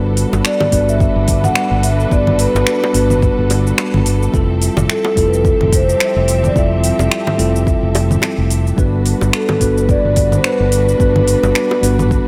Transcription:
Already playing: fretless electric bass G1, tine electric piano G3 B3 D4 F#4 B4, string section G3 D4 F#4 A4 B4
0.17 open hi-hat, shaker
0.33 fretless electric bass G1, high bongo, shaker
0.45 vibraphone D5, finger snap, shaker
0.60 high bongo, low conga
0.71 fretless electric bass G1, tine electric piano G3 B3 D4 F#4 B4, kick, open hi-hat, shaker
0.89 vibraphone E5, shaker
1.00 kick, shaker
1.16 fretless electric bass G1
1.28 kick, open hi-hat, shaker
1.44 vibraphone F#5, low conga, shaker
1.55 finger snap, shaker
1.71 fretless electric bass G1
1.83 vibraphone E5, open hi-hat, shaker
2.00 shaker
2.10 fretless electric bass G1, tine electric piano G3 B3 D4 F#4 B4, vibraphone D5, kick, shaker
2.27 low conga
2.39 vibraphone B4, open hi-hat, shaker
2.55 fretless electric bass G1, high bongo, shaker
2.67 vibraphone B4, finger snap, shaker
2.84 high bongo
2.93 fretless electric bass G1, tine electric piano G3 B3 D4 F#4 B4, open hi-hat, shaker
3.10 low conga, shaker
3.22 kick, shaker
3.39 fretless electric bass G1
3.50 open hi-hat, high bongo, shaker
3.67 shaker
3.78 finger snap, high bongo, shaker
3.94 fretless electric bass G1, low conga
4.06 open hi-hat, shaker
4.23 shaker
4.32 fretless electric bass F1, string section F3 C4 G4 E5, tine electric piano G3 C4 E4 F4 A4, kick, shaker
4.62 open hi-hat, shaker
4.77 fretless electric bass F1, high bongo, low conga, shaker
4.90 vibraphone A4, finger snap, shaker
5.05 high bongo
5.15 fretless electric bass F1, tine electric piano G3 C4 E4 F4 A4, kick, open hi-hat, shaker
5.27 vibraphone B4
5.33 vibraphone A4, shaker
5.45 kick, shaker
5.61 fretless electric bass F1, low conga
5.73 vibraphone C5, kick, open hi-hat, shaker
5.89 shaker
6.00 finger snap, shaker
6.16 fretless electric bass F1
6.28 open hi-hat, shaker
6.44 vibraphone D5, low conga, shaker
6.54 fretless electric bass F1, tine electric piano G3 C4 E4 F4 A4, kick, shaker
6.59 vibraphone E5
6.84 open hi-hat, shaker
6.99 fretless electric bass F1, high bongo, shaker
7.12 finger snap, shaker
7.27 high bongo, low conga
7.37 fretless electric bass F1, tine electric piano G3 C4 E4 F4 A4, open hi-hat, shaker
7.56 shaker
7.67 kick, shaker
7.83 fretless electric bass F1
7.95 open hi-hat, high bongo, shaker
8.11 low conga, shaker
8.22 finger snap, high bongo, shaker
8.38 fretless electric bass F1
8.50 open hi-hat, shaker
8.67 shaker
8.76 fretless electric bass G1, tine electric piano G3 B3 D4 F#4 B4, string section G3 D4 F#4 A4 B4, kick, shaker
9.06 open hi-hat, shaker
9.21 fretless electric bass G1, high bongo, shaker
9.33 vibraphone A4, finger snap, shaker
9.49 high bongo, low conga
9.59 fretless electric bass G1, tine electric piano G3 B3 D4 F#4 B4, kick, open hi-hat, shaker
9.78 vibraphone B4, shaker
9.89 vibraphone D5, kick, shaker
10.05 fretless electric bass G1
10.16 kick, open hi-hat, shaker
10.32 vibraphone C5, low conga, shaker
10.44 vibraphone B4, finger snap, shaker
10.60 fretless electric bass G1
10.72 vibraphone B4, open hi-hat, shaker
10.89 shaker
10.99 fretless electric bass G1, tine electric piano G3 B3 D4 F#4 B4, kick, shaker
11.16 low conga
11.28 open hi-hat, shaker
11.43 fretless electric bass G1, high bongo, shaker
11.55 finger snap, shaker
11.71 high bongo
11.82 fretless electric bass G1, tine electric piano G3 B3 D4 F#4 B4, open hi-hat, shaker
11.99 low conga, shaker
12.11 kick, shaker

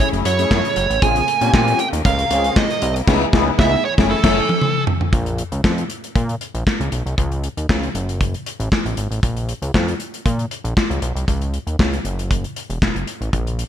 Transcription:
Already playing: string section A2 A3 E4, analog polysynth A3 C#4 E4 G#4
0.00 kick, closed hi-hat
0.13 analog synth bass F#1, closed hi-hat
0.25 analog synth bass F#2, lead electric guitar C#5, closed hi-hat
0.38 analog polysynth A3 C#4 E4 G#4, closed hi-hat
0.51 analog synth bass F#2, kick, snare, clap
0.65 closed hi-hat
0.76 analog synth bass F#1, closed hi-hat
0.90 analog synth bass A1, closed hi-hat
1.01 analog synth bass A#1, string section C#3 A#3, analog polysynth C4 C#4 F4 G#4, lead electric guitar G#5, kick, closed hi-hat
1.16 closed hi-hat
1.28 closed hi-hat
1.41 analog synth bass A#2, analog polysynth C4 C#4 F4 G4, closed hi-hat
1.53 analog synth bass A#2, lead electric guitar G#5, kick, snare, clap
1.68 closed hi-hat
1.79 lead electric guitar G5, closed hi-hat
1.93 analog synth bass D#2, closed hi-hat
2.05 analog synth bass C#2, lead electric guitar F5, kick, closed hi-hat
2.19 closed hi-hat
2.30 analog synth bass C#2, analog polysynth C4 C#4 F4 G#4, closed hi-hat
2.44 closed hi-hat
2.56 lead electric guitar D#5, kick, snare, clap
2.70 closed hi-hat
2.82 analog synth bass C2, closed hi-hat
2.96 closed hi-hat
3.07 analog synth bass C#2, analog polysynth B3 D#4 E4 G#4, string section B3 D#4 E4, kick, snare, crash
3.33 analog synth bass C#2, analog polysynth B3 D#4 E4 G#4, kick, snare
3.59 analog synth bass C#2, analog polysynth B3 D#4 E4 G#4, lead electric guitar E5, kick, snare
3.85 string section E3 A3 G#5, lead electric guitar C#5
3.98 analog synth bass F#1, analog polysynth A3 C#4 E4 G#4, kick, snare
4.11 lead electric guitar A4
4.23 analog synth bass F#1, analog polysynth A3 C#4 E4 A4, kick, snare, crash
4.49 high tom
4.62 mid tom
4.87 floor tom
5.01 floor tom
5.13 analog synth bass A#1, kick, closed hi-hat
5.26 closed hi-hat
5.38 closed hi-hat
5.52 analog synth bass C#2, closed hi-hat
5.64 analog synth bass F2, kick, snare, clap
5.78 closed hi-hat
5.90 closed hi-hat
6.04 closed hi-hat
6.16 analog synth bass A#2, kick, closed hi-hat
6.29 closed hi-hat
6.41 closed hi-hat
6.54 analog synth bass A#1, closed hi-hat
6.67 kick, snare, clap
6.80 analog synth bass C#2, closed hi-hat
6.92 analog synth bass B1, closed hi-hat
7.06 analog synth bass C2, closed hi-hat
7.18 analog synth bass C#2, kick, closed hi-hat
7.32 closed hi-hat
7.44 closed hi-hat
7.57 analog synth bass D#2, closed hi-hat
7.69 analog synth bass C#2, kick, snare, clap
7.83 closed hi-hat
7.95 analog synth bass F#1, closed hi-hat
8.09 closed hi-hat
8.21 kick, closed hi-hat
8.34 closed hi-hat
8.46 closed hi-hat
8.60 analog synth bass A1, closed hi-hat
8.72 kick, snare, clap
8.85 analog synth bass A1, closed hi-hat
8.97 analog synth bass G#1, closed hi-hat
9.11 analog synth bass A1, closed hi-hat
9.23 analog synth bass A#1, kick, closed hi-hat
9.37 closed hi-hat
9.49 closed hi-hat
9.62 analog synth bass C#2, closed hi-hat
9.74 analog synth bass F2, kick, snare, clap
9.88 closed hi-hat
10.00 closed hi-hat
10.14 closed hi-hat
10.26 analog synth bass A#2, kick, closed hi-hat
10.39 closed hi-hat
10.51 closed hi-hat
10.64 analog synth bass A#1, closed hi-hat
10.77 kick, snare, clap
10.90 analog synth bass C#2, closed hi-hat
11.02 analog synth bass B1, closed hi-hat
11.16 analog synth bass C2, closed hi-hat
11.28 analog synth bass C#2, kick, closed hi-hat
11.41 closed hi-hat
11.54 closed hi-hat
11.67 analog synth bass D#2, closed hi-hat
11.79 analog synth bass C#2, kick, snare, clap
11.93 closed hi-hat
12.05 analog synth bass F#1, closed hi-hat
12.19 closed hi-hat
12.31 kick, closed hi-hat
12.44 closed hi-hat
12.56 closed hi-hat
12.70 analog synth bass E1, closed hi-hat
12.82 analog synth bass E1, kick, snare, clap
12.95 analog synth bass F#1, closed hi-hat
13.07 closed hi-hat
13.21 analog synth bass A1, closed hi-hat
13.33 analog synth bass A#1, kick, closed hi-hat
13.47 closed hi-hat
13.59 closed hi-hat

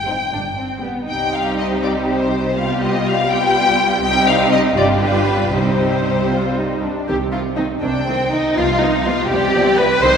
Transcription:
Already playing: double bass section G1, cello section G2, violin section G5
0.08 viola section G3 C4, violin section D#4 C5
0.33 double bass section G1, cello section G2, violin section D4
0.59 violin section C4
0.84 viola section G3 B3, violin section B3
1.09 double bass section C2, cello section C3, viola section G3 C4, violin section D#4 G4 G5
1.34 violin section F5
1.59 violin section D#5
1.84 violin section D5
2.07 violin section C5
2.56 viola section G3 B3, violin section F4 G4 F5
2.82 violin section D#5
3.07 violin section F5
3.30 viola section G3 B3, violin section F4 G4 G5
4.03 double bass section C2, cello section C3, viola section G3 C4, violin section D#4 G4 G5
4.27 violin section F5
4.52 violin section D#5
4.77 double bass section G1, cello section G2, viola section G3 D4, violin section F4 G4 D5
5.02 violin section B4
5.53 double bass section C2, cello section C3, viola section G3 C4, violin section D#4 G4 C5
6.30 violin section F4
6.57 violin section D#4
6.83 violin section D4
7.08 double bass section C2, cello section C3, viola section D#3 C4, violin section G4
7.33 viola section D#3 C4, violin section F4
7.57 viola section D#3 C4, violin section D#4
7.82 double bass section C2, cello section C3, viola section D#3 C4, violin section D4 G5
8.07 viola section D#3 C4, violin section C4
8.32 viola section D#3 C4, violin section D#4
8.57 double bass section C2, cello section C3, viola section F3 B3, violin section F4 F5
8.81 viola section F3 B3, violin section D#4
9.05 viola section F3 B3, violin section F4
9.28 double bass section C2, cello section C3, viola section F3 B3, violin section G4 D5
9.55 viola section F3 B3
9.77 viola section F3 B3, violin section B4
10.02 double bass section C2, cello section C3, viola section D#3 C4, violin section C5 D#5

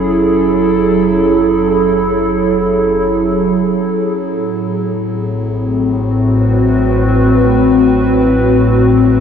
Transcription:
Already playing: synth drone F#1, ambient pad F#3 C#4 E4 G#4 A4, harmonium F#3
4.28 synth drone A1, ambient pad A2
4.46 ambient pad A3
4.58 ambient pad C4
5.10 ambient pad F#4
5.70 ambient pad B4

